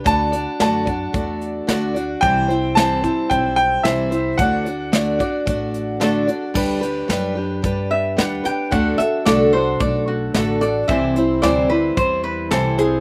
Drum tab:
CC |--------|--------|--------|x-------|
HH |xxxxxxxx|xxxxxxxx|xxxxxxxx|-xx-x-xx|
SD |--o---o-|--o---o-|--o---o-|--o---o-|
BD |o--oo---|o--oo---|o--oo---|o---o---|

CC |--------|--------|
HH |xxx-x-xx|xxx-x-xx|
SD |--o---o-|--o---o-|
BD |o---o---|o---o---|